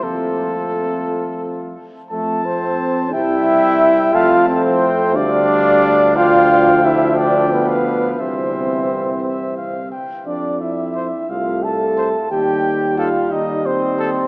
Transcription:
X:1
M:6/8
L:1/16
Q:3/8=59
K:F
V:1 name="Trumpet"
A8- A2 z2 | a6 g6 | a3 g3 f6 | g6 g3 f3 |
e6 e2 f2 g2 | z4 c z4 z c z | z4 A z4 z A z |]
V:2 name="Flugelhorn"
F8- F2 z2 | A2 c4 e6 | f2 c4 d6 | f4 e2 d2 =B4 |
c8- c2 z2 | d2 e4 f2 a4 | g4 f2 _e2 c4 |]
V:3 name="Trombone"
C8- C z3 | A,2 C4 E6 | F2 C4 D6 | F4 E2 D2 =B,4 |
C8- C2 z2 | D2 E4 F2 A4 | G4 F2 _E2 C4 |]
V:4 name="French horn" clef=bass
A,8- A,2 z2 | z6 G,6 | A,6 G,6 | F,12 |
E,8- E, z3 | z6 A,6 | G,12 |]
V:5 name="Tuba" clef=bass
F,,8- F,,2 z2 | F,,6 C,,6 | F,,6 D,,6- | D,,12 |
C,,8- C,,2 z2 | F,,6 C,,6 | _E,,6 E,,6 |]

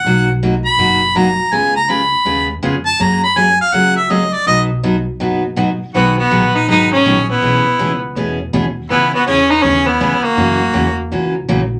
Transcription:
X:1
M:4/4
L:1/16
Q:"Swing" 1/4=163
K:B
V:1 name="Harmonica"
f2 z4 b6 a4 | g2 a2 b6 z4 =a2 | a2 b2 g2 ^e2 f2 =e2 d2 =d2 | d2 z12 z2 |
F2 F4 B2 B2 G4 E2- | E6 z8 z2 | E2 F2 G2 B2 G2 E4 F2- | F6 z8 z2 |]
V:2 name="Fiddle"
z16 | z16 | z16 | z16 |
B,2 B,4 D2 D2 C4 B,2- | B,6 z8 z2 | B,2 B,2 C2 D2 C2 B,4 A,2- | A,6 z8 z2 |]
V:3 name="Steel-string acoustic guitar"
[B,,F,A,DF]2 z2 [B,,F,A,DF] z3 [B,,F,A,DF]2 z2 [B,,F,A,DF] z3 | [C,G,B,^EG]2 z2 [C,G,B,EG] z3 [C,G,B,EG]2 z2 [C,G,B,EG] z3 | [F,A,CG]2 z2 [F,A,CG] z3 [F,A,CG]2 z2 [F,A,CG] z3 | [B,,F,B,DF]2 z2 [B,,F,B,DF] z3 [B,,F,B,DF]2 z2 [B,,F,B,DF] z3 |
[B,,D,F,B,DG]2 z2 [B,,D,F,B,DG] z3 [B,,D,F,B,DG]2 z2 [B,,D,F,B,DG] z3 | [B,,E,B,CG]2 z2 [B,,E,B,CG] z3 [B,,E,B,CG]2 z2 [B,,E,B,CG] z3 | [C,E,B,CG]2 z2 [C,E,B,CG] z3 [C,E,B,CG]2 z2 [C,E,B,CG] z3 | [C,E,A,CF]2 z2 [C,E,A,CF] z3 [C,E,A,CF]2 z2 [C,E,A,CF] z3 |]
V:4 name="Upright bass" clef=bass
B,,,8 F,,,8 | C,,8 D,,4 ^E,,4 | F,,8 C,,8 | B,,,8 F,,,8 |
B,,,4 A,,,4 G,,,4 A,,,4 | B,,,2 z2 C,,4 E,,4 D,,4 | C,,4 E,,4 D,,4 C,,4 | F,,4 E,,4 C,,4 A,,,4 |]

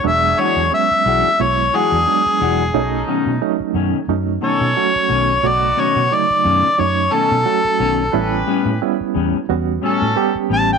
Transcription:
X:1
M:4/4
L:1/16
Q:"Swing 16ths" 1/4=89
K:Bdor
V:1 name="Harmonica"
e2 c2 e4 c2 G6- | G2 z8 c6 | d2 c2 d4 c2 A6- | A2 z12 a =g |]
V:2 name="Horn section"
[DFG]4 z6 [DFG]3 z3 | [A,C^D]4 z6 [CDA]3 z3 | [B,^DF]4 z6 [CDA]3 z3 | [C=GB]4 z6 [CA]3 z3 |]
V:3 name="Reed electric piano"
[F,G,B,D]4 [F,G,B,C]4 [F,G,B,E]4 [F,G,B,D]4 | [F,A,C^D]4 [F,A,CD]4 [F,A,CD]4 [F,A,CF]4 | [C,F,A,F]4 [C,F,A,^D]4 [F,A,CD]4 [F,A,CF]4 | [=G,B,CE]4 [G,B,CE]4 [G,B,CF]4 [G,B,C=G]4 |]
V:4 name="Clean electric guitar" clef=bass
z2 [E,G,DF]2 z2 [E,G,DF]2 z2 [E,G,DF]2 z2 [E,G,DF]2 | z2 [B,,^D,A,C]2 z2 [B,,D,A,C]2 z2 [B,,D,A,C]2 z2 [B,,D,A,C]2 | z2 [B,,^D,A,C]2 z2 [B,,D,A,C]2 z2 [B,,D,A,C]2 z2 [B,,D,A,C]2 | z2 [A,,=G,B,C]2 z2 [A,,G,B,C]2 z2 [A,,G,B,C]2 z2 [A,,G,B,C]2 |]
V:5 name="Fingered electric bass" clef=bass
E,,,2 z E,, z2 B,,, z B,,,2 z E,, z2 E,,,2 | B,,,2 z B,, z2 F,, z F,,2 z B,, z2 B,,,2 | B,,,2 z B,, z2 F,, z F,,2 z B,, z2 B,,,2 | A,,,2 z A,, z2 E,, z E,,2 z A,, z2 A,,,2 |]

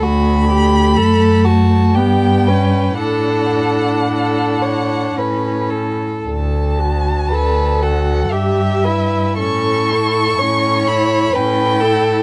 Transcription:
X:1
M:3/4
L:1/8
Q:1/4=58
K:D
V:1 name="Violin"
b3 a g2 | f4 z2 | a3 f e2 | c'3 b g2 |]
V:2 name="Violin"
F G A F G B | A2 A c B A | z2 B A G B | A2 c2 B A |]
V:3 name="Viola"
A,4 B, C | D4 C2 | A F A F G E | C E C E C E |]
V:4 name="Cello" clef=bass
D,,2 F,,2 G,,2 | A,,4 A,,2 | D,,2 D,,2 G,,2 | A,,2 A,,2 A,,2 |]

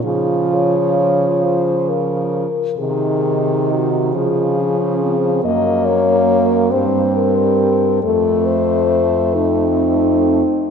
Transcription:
X:1
M:6/8
L:1/8
Q:3/8=45
K:Db
V:1 name="French horn"
A d2 c B2 | A2 G A3 | e d z c B2 | =A c2 E3 |]
V:2 name="French horn"
F4- F z | E3 F D C | B,3 =G,3 | =A,2 z C3 |]
V:3 name="French horn" clef=bass
F,4- F, z | E,3 F,3 | B,3 C3 | =A,4- A, z |]
V:4 name="French horn" clef=bass
D,4- D, z | C,3 D,3 | G,,3 =G,,3 | F,,4- F,, z |]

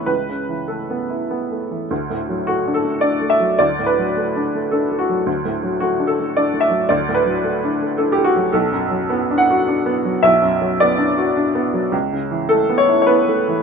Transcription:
X:1
M:3/4
L:1/16
Q:1/4=107
K:D
V:1 name="Upright piano"
B4 A4 z4 | z4 F2 A2 d2 e2 | d2 B6 A2 F2 | z4 F2 A2 d2 e2 |
d2 B6 A G F2 | A6 f6 | e4 d8 | z4 A2 c3/2 c/2 B4 |]
V:2 name="Upright piano"
(3[C,,E,]2 C,2 E,2 (3A,2 B,2 E2 (3B,2 A,2 E,2 | (3D,,2 A,,2 F,2 (3A,2 D2 A,2 (3D2 A,2 F,2 | (3D,,2 A,,2 F,2 (3A,2 D2 A,2 (3D2 A,2 F,2 | (3D,,2 A,,2 F,2 (3A,2 D2 A,2 (3D2 A,2 F,2 |
(3D,,2 A,,2 F,2 (3A,2 D2 A,2 (3D2 A,2 F,2 | (3B,,,2 F,,2 F,2 (3B,2 D2 F2 (3D2 B,2 F,2 | (3B,,,2 F,,2 F,2 (3B,2 D2 F2 (3D2 B,2 F,2 | (3C,,2 C,2 E,2 (3A,2 B,2 E2 (3B,2 A,2 E,2 |]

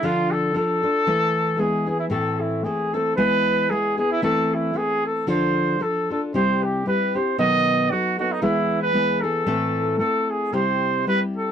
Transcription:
X:1
M:2/4
L:1/16
Q:"Swing" 1/4=114
K:Am
V:1 name="Trumpet"
F2 A2 A4- | A4 ^G2 G E | A2 E2 ^G2 A2 | B4 ^G2 G E |
A2 E2 ^G2 A2 | c4 A2 A z | c2 G2 B2 c2 | ^d4 ^F2 F ^D |
E3 B3 A2- | A4 A2 ^G2 | [K:C] c4 B2 A2 |]
V:2 name="Nylon-string guitar"
[D,F,DFA]4 [F,DFA]2 [DFA]2 | [E,A,EAB]4 [^G,B,E^G]2 [B,EG]2 | [A,,E,A,CEA]4 [A,CEA]2 [A,CEA]2 | [E,^G,B,E^G]4 [G,B,EG]2 [B,EG]2 |
[E,A,CEA]4 [A,CEA]4 | [D,F,DFA]4 [F,DFA]2 [DFA]2 | [C,G,CEG]4 [G,CEG]2 [CEG]2 | [B,,^D,^F,B,^DA]4 [F,B,DA]2 [F,B,DA]2 |
[E,^G,B,E^G]4 [G,B,EG]2 [B,EG]2 | [A,,E,A,CEA]4 [A,CEA]4 | [K:C] [C,G,CEG]4 [G,CEG]4 |]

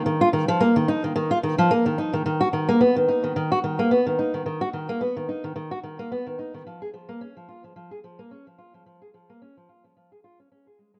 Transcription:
X:1
M:4/4
L:1/16
Q:"Swing 16ths" 1/4=109
K:Blyd
V:1 name="Steel-string acoustic guitar" clef=bass
D, E D, E, A, D, D D, D, E D, E, A, D, D D, | D, F D, A, B, D, D D, D, F D, A, B, D, D D, | D, F D, A, B, D, D D, D, F D, A, B, D, D D, | E, G E, A, C E, E E, E, G E, A, C E, E E, |
E, G E, A, C E, E E, E, G E C C G G, G, |]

